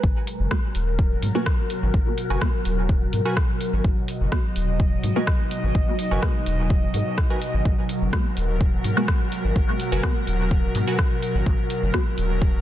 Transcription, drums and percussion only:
0.03 kick
0.27 open hi-hat
0.51 kick, cross-stick
0.75 open hi-hat
0.99 kick
1.22 open hi-hat
1.46 kick, cross-stick
1.70 open hi-hat
1.94 kick
2.18 open hi-hat
2.41 kick, cross-stick
2.65 open hi-hat
2.89 kick
3.13 open hi-hat
3.37 kick, cross-stick
3.61 open hi-hat
3.84 kick
4.08 open hi-hat
4.32 kick, cross-stick
4.56 open hi-hat
4.80 kick
5.03 open hi-hat
5.27 kick, cross-stick
5.51 open hi-hat
5.75 kick
5.99 open hi-hat
6.23 kick, cross-stick
6.46 open hi-hat
6.70 kick
6.94 open hi-hat
7.18 kick, cross-stick
7.42 open hi-hat
7.65 kick
7.89 open hi-hat
8.13 kick, cross-stick
8.37 open hi-hat
8.61 kick
8.84 open hi-hat
9.08 kick, cross-stick
9.32 open hi-hat
9.56 kick
9.80 open hi-hat
10.03 kick, cross-stick
10.27 open hi-hat
10.51 kick
10.75 open hi-hat
10.99 kick, cross-stick
11.22 open hi-hat
11.46 kick
11.70 open hi-hat
11.94 kick, cross-stick
12.18 open hi-hat
12.42 kick

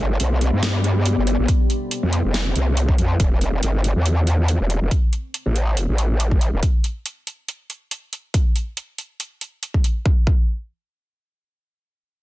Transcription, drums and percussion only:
0.20 closed hi-hat
0.41 closed hi-hat
0.63 snare, closed hi-hat
0.84 closed hi-hat
1.06 closed hi-hat
1.27 closed hi-hat
1.48 kick, closed hi-hat
1.70 closed hi-hat
1.91 closed hi-hat
2.13 closed hi-hat
2.34 snare, closed hi-hat
2.56 closed hi-hat
2.77 closed hi-hat
2.89 kick
2.98 closed hi-hat
3.20 kick, closed hi-hat
3.41 closed hi-hat
3.63 closed hi-hat
3.84 closed hi-hat
4.06 closed hi-hat
4.27 closed hi-hat
4.48 closed hi-hat
4.70 closed hi-hat
4.91 kick, closed hi-hat
5.13 closed hi-hat
5.34 closed hi-hat
5.56 closed hi-hat
5.77 closed hi-hat
5.98 closed hi-hat
6.20 closed hi-hat
6.31 kick
6.41 closed hi-hat
6.63 kick, closed hi-hat
6.84 closed hi-hat
7.06 closed hi-hat
7.27 closed hi-hat
7.48 closed hi-hat
7.70 closed hi-hat
7.91 closed hi-hat
8.13 closed hi-hat
8.34 kick, closed hi-hat
8.56 closed hi-hat
8.77 closed hi-hat
8.98 closed hi-hat
9.20 closed hi-hat
9.41 closed hi-hat
9.63 closed hi-hat
9.74 kick
9.84 closed hi-hat
10.06 kick
10.27 kick

